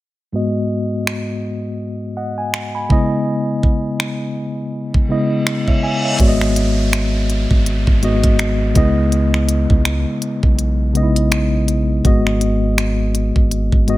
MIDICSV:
0, 0, Header, 1, 6, 480
1, 0, Start_track
1, 0, Tempo, 731707
1, 224, Time_signature, 4, 2, 24, 8
1, 9168, End_track
2, 0, Start_track
2, 0, Title_t, "Tine electric piano"
2, 0, Program_c, 0, 4
2, 213, Note_on_c, 0, 44, 73
2, 217, Note_on_c, 0, 56, 68
2, 224, Note_on_c, 0, 59, 64
2, 229, Note_on_c, 0, 66, 68
2, 234, Note_on_c, 0, 75, 87
2, 341, Control_c, 0, 64, 127
2, 848, Note_off_c, 0, 44, 0
2, 850, Note_off_c, 0, 56, 0
2, 853, Note_off_c, 0, 59, 0
2, 856, Note_off_c, 0, 66, 0
2, 858, Note_off_c, 0, 75, 0
2, 1422, Note_on_c, 0, 78, 62
2, 1425, Note_on_c, 0, 75, 51
2, 1556, Note_off_c, 0, 78, 0
2, 1557, Note_off_c, 0, 75, 0
2, 1560, Note_on_c, 0, 80, 65
2, 1790, Note_off_c, 0, 80, 0
2, 1803, Note_on_c, 0, 83, 61
2, 1806, Note_on_c, 0, 80, 50
2, 1894, Note_on_c, 0, 49, 83
2, 1899, Note_on_c, 0, 56, 78
2, 1905, Note_on_c, 0, 59, 78
2, 1911, Note_on_c, 0, 64, 78
2, 1913, Control_c, 0, 64, 0
2, 1917, Note_on_c, 0, 75, 91
2, 2031, Note_off_c, 0, 83, 0
2, 2033, Note_off_c, 0, 80, 0
2, 2033, Control_c, 0, 64, 127
2, 2675, Note_off_c, 0, 49, 0
2, 2677, Note_off_c, 0, 56, 0
2, 2680, Note_off_c, 0, 59, 0
2, 2683, Note_off_c, 0, 64, 0
2, 2686, Note_off_c, 0, 75, 0
2, 3335, Note_on_c, 0, 49, 84
2, 3342, Note_on_c, 0, 56, 76
2, 3347, Note_on_c, 0, 59, 69
2, 3352, Note_on_c, 0, 64, 76
2, 3356, Note_on_c, 0, 75, 90
2, 3590, Note_off_c, 0, 75, 0
2, 3725, Note_on_c, 0, 76, 63
2, 3728, Note_on_c, 0, 73, 49
2, 3802, Note_off_c, 0, 49, 0
2, 3805, Note_off_c, 0, 56, 0
2, 3808, Note_off_c, 0, 59, 0
2, 3810, Note_off_c, 0, 64, 0
2, 3820, Note_off_c, 0, 76, 0
2, 3822, Note_off_c, 0, 73, 0
2, 3826, Note_on_c, 0, 80, 67
2, 3831, Note_on_c, 0, 76, 58
2, 3956, Note_off_c, 0, 76, 0
2, 3958, Note_off_c, 0, 80, 0
2, 3964, Note_on_c, 0, 76, 61
2, 3968, Note_on_c, 0, 73, 51
2, 4056, Note_on_c, 0, 44, 76
2, 4061, Note_on_c, 0, 56, 74
2, 4067, Note_on_c, 0, 59, 67
2, 4072, Control_c, 0, 64, 0
2, 4072, Note_on_c, 0, 66, 72
2, 4078, Note_on_c, 0, 74, 71
2, 4120, Note_off_c, 0, 74, 0
2, 4120, Note_on_c, 0, 75, 92
2, 4192, Note_off_c, 0, 76, 0
2, 4194, Note_off_c, 0, 73, 0
2, 4202, Control_c, 0, 64, 127
2, 4689, Note_off_c, 0, 44, 0
2, 4692, Note_off_c, 0, 56, 0
2, 4695, Note_off_c, 0, 59, 0
2, 4697, Note_off_c, 0, 66, 0
2, 4721, Note_off_c, 0, 75, 0
2, 5256, Note_on_c, 0, 44, 84
2, 5260, Note_on_c, 0, 56, 77
2, 5266, Note_on_c, 0, 59, 76
2, 5271, Note_on_c, 0, 66, 75
2, 5278, Note_on_c, 0, 75, 93
2, 5722, Note_off_c, 0, 44, 0
2, 5724, Note_off_c, 0, 56, 0
2, 5727, Note_off_c, 0, 59, 0
2, 5730, Note_off_c, 0, 66, 0
2, 5733, Note_off_c, 0, 75, 0
2, 5734, Note_on_c, 0, 49, 86
2, 5739, Note_on_c, 0, 56, 77
2, 5745, Note_on_c, 0, 59, 79
2, 5751, Note_on_c, 0, 64, 75
2, 5752, Control_c, 0, 64, 0
2, 5756, Note_on_c, 0, 75, 97
2, 5884, Control_c, 0, 64, 127
2, 6515, Note_off_c, 0, 49, 0
2, 6517, Note_off_c, 0, 56, 0
2, 6520, Note_off_c, 0, 59, 0
2, 6523, Note_off_c, 0, 64, 0
2, 6526, Note_off_c, 0, 75, 0
2, 7174, Note_on_c, 0, 49, 85
2, 7180, Note_on_c, 0, 56, 75
2, 7185, Note_on_c, 0, 59, 73
2, 7191, Note_on_c, 0, 63, 57
2, 7196, Note_on_c, 0, 75, 90
2, 7234, Note_on_c, 0, 64, 75
2, 7237, Note_off_c, 0, 63, 0
2, 7641, Note_off_c, 0, 49, 0
2, 7644, Note_off_c, 0, 56, 0
2, 7647, Note_off_c, 0, 59, 0
2, 7653, Note_off_c, 0, 75, 0
2, 7671, Note_off_c, 0, 64, 0
2, 7894, Note_on_c, 0, 44, 76
2, 7900, Note_on_c, 0, 56, 74
2, 7905, Note_on_c, 0, 59, 75
2, 7910, Note_on_c, 0, 66, 76
2, 7914, Control_c, 0, 64, 0
2, 7916, Note_on_c, 0, 75, 88
2, 8046, Control_c, 0, 64, 127
2, 8528, Note_off_c, 0, 44, 0
2, 8531, Note_off_c, 0, 56, 0
2, 8533, Note_off_c, 0, 59, 0
2, 8536, Note_off_c, 0, 66, 0
2, 8539, Note_off_c, 0, 75, 0
2, 9096, Note_on_c, 0, 44, 83
2, 9100, Note_on_c, 0, 56, 75
2, 9106, Note_on_c, 0, 59, 72
2, 9111, Note_on_c, 0, 66, 76
2, 9116, Note_on_c, 0, 75, 94
2, 9168, Note_off_c, 0, 44, 0
2, 9168, Note_off_c, 0, 56, 0
2, 9168, Note_off_c, 0, 59, 0
2, 9168, Note_off_c, 0, 66, 0
2, 9168, Note_off_c, 0, 75, 0
2, 9168, End_track
3, 0, Start_track
3, 0, Title_t, "808-style bass"
3, 0, Program_c, 1, 38
3, 4067, Note_on_c, 1, 32, 109
3, 4899, Note_off_c, 1, 32, 0
3, 4925, Note_on_c, 1, 32, 97
3, 5155, Note_off_c, 1, 32, 0
3, 5165, Note_on_c, 1, 32, 101
3, 5395, Note_off_c, 1, 32, 0
3, 5405, Note_on_c, 1, 32, 93
3, 5731, Note_off_c, 1, 32, 0
3, 5745, Note_on_c, 1, 37, 99
3, 6339, Note_off_c, 1, 37, 0
3, 6365, Note_on_c, 1, 37, 94
3, 6595, Note_off_c, 1, 37, 0
3, 6844, Note_on_c, 1, 35, 96
3, 7878, Note_off_c, 1, 35, 0
3, 7904, Note_on_c, 1, 32, 107
3, 8737, Note_off_c, 1, 32, 0
3, 8765, Note_on_c, 1, 32, 102
3, 8995, Note_off_c, 1, 32, 0
3, 9004, Note_on_c, 1, 32, 100
3, 9168, Note_off_c, 1, 32, 0
3, 9168, End_track
4, 0, Start_track
4, 0, Title_t, "Downlifter"
4, 0, Program_c, 2, 103
4, 4065, Note_on_c, 2, 60, 72
4, 7905, Note_off_c, 2, 60, 0
4, 9168, End_track
5, 0, Start_track
5, 0, Title_t, "Reverse cymbal"
5, 0, Program_c, 3, 119
5, 3105, Note_on_c, 3, 60, 83
5, 4064, Note_off_c, 3, 60, 0
5, 9168, End_track
6, 0, Start_track
6, 0, Title_t, "Drums"
6, 704, Note_on_c, 9, 26, 99
6, 770, Note_off_c, 9, 26, 0
6, 1665, Note_on_c, 9, 26, 108
6, 1730, Note_off_c, 9, 26, 0
6, 1904, Note_on_c, 9, 36, 101
6, 1969, Note_off_c, 9, 36, 0
6, 2384, Note_on_c, 9, 36, 87
6, 2449, Note_off_c, 9, 36, 0
6, 2623, Note_on_c, 9, 26, 104
6, 2689, Note_off_c, 9, 26, 0
6, 3243, Note_on_c, 9, 36, 87
6, 3309, Note_off_c, 9, 36, 0
6, 3586, Note_on_c, 9, 26, 107
6, 3652, Note_off_c, 9, 26, 0
6, 3724, Note_on_c, 9, 36, 90
6, 3789, Note_off_c, 9, 36, 0
6, 4065, Note_on_c, 9, 36, 113
6, 4065, Note_on_c, 9, 42, 66
6, 4130, Note_off_c, 9, 36, 0
6, 4130, Note_off_c, 9, 42, 0
6, 4208, Note_on_c, 9, 26, 63
6, 4274, Note_off_c, 9, 26, 0
6, 4305, Note_on_c, 9, 42, 74
6, 4371, Note_off_c, 9, 42, 0
6, 4547, Note_on_c, 9, 26, 101
6, 4547, Note_on_c, 9, 42, 74
6, 4612, Note_off_c, 9, 26, 0
6, 4613, Note_off_c, 9, 42, 0
6, 4786, Note_on_c, 9, 42, 62
6, 4852, Note_off_c, 9, 42, 0
6, 4924, Note_on_c, 9, 36, 88
6, 4990, Note_off_c, 9, 36, 0
6, 5027, Note_on_c, 9, 42, 65
6, 5093, Note_off_c, 9, 42, 0
6, 5164, Note_on_c, 9, 36, 89
6, 5230, Note_off_c, 9, 36, 0
6, 5266, Note_on_c, 9, 42, 44
6, 5331, Note_off_c, 9, 42, 0
6, 5402, Note_on_c, 9, 42, 75
6, 5404, Note_on_c, 9, 36, 85
6, 5468, Note_off_c, 9, 42, 0
6, 5469, Note_off_c, 9, 36, 0
6, 5504, Note_on_c, 9, 42, 76
6, 5506, Note_on_c, 9, 26, 111
6, 5570, Note_off_c, 9, 42, 0
6, 5572, Note_off_c, 9, 26, 0
6, 5743, Note_on_c, 9, 42, 71
6, 5744, Note_on_c, 9, 36, 102
6, 5808, Note_off_c, 9, 42, 0
6, 5810, Note_off_c, 9, 36, 0
6, 5984, Note_on_c, 9, 42, 68
6, 6050, Note_off_c, 9, 42, 0
6, 6128, Note_on_c, 9, 26, 66
6, 6193, Note_off_c, 9, 26, 0
6, 6223, Note_on_c, 9, 42, 78
6, 6288, Note_off_c, 9, 42, 0
6, 6363, Note_on_c, 9, 36, 91
6, 6429, Note_off_c, 9, 36, 0
6, 6464, Note_on_c, 9, 26, 107
6, 6464, Note_on_c, 9, 42, 67
6, 6529, Note_off_c, 9, 26, 0
6, 6530, Note_off_c, 9, 42, 0
6, 6704, Note_on_c, 9, 42, 60
6, 6769, Note_off_c, 9, 42, 0
6, 6842, Note_on_c, 9, 36, 83
6, 6908, Note_off_c, 9, 36, 0
6, 6944, Note_on_c, 9, 42, 68
6, 7010, Note_off_c, 9, 42, 0
6, 7184, Note_on_c, 9, 42, 44
6, 7250, Note_off_c, 9, 42, 0
6, 7323, Note_on_c, 9, 42, 73
6, 7388, Note_off_c, 9, 42, 0
6, 7424, Note_on_c, 9, 42, 76
6, 7426, Note_on_c, 9, 26, 114
6, 7489, Note_off_c, 9, 42, 0
6, 7491, Note_off_c, 9, 26, 0
6, 7663, Note_on_c, 9, 42, 70
6, 7729, Note_off_c, 9, 42, 0
6, 7903, Note_on_c, 9, 36, 113
6, 7903, Note_on_c, 9, 42, 64
6, 7969, Note_off_c, 9, 36, 0
6, 7969, Note_off_c, 9, 42, 0
6, 8047, Note_on_c, 9, 26, 65
6, 8113, Note_off_c, 9, 26, 0
6, 8142, Note_on_c, 9, 42, 78
6, 8208, Note_off_c, 9, 42, 0
6, 8384, Note_on_c, 9, 26, 106
6, 8385, Note_on_c, 9, 42, 71
6, 8450, Note_off_c, 9, 26, 0
6, 8451, Note_off_c, 9, 42, 0
6, 8624, Note_on_c, 9, 42, 59
6, 8690, Note_off_c, 9, 42, 0
6, 8763, Note_on_c, 9, 36, 85
6, 8829, Note_off_c, 9, 36, 0
6, 8865, Note_on_c, 9, 42, 67
6, 8931, Note_off_c, 9, 42, 0
6, 9003, Note_on_c, 9, 36, 88
6, 9069, Note_off_c, 9, 36, 0
6, 9104, Note_on_c, 9, 42, 42
6, 9168, Note_off_c, 9, 42, 0
6, 9168, End_track
0, 0, End_of_file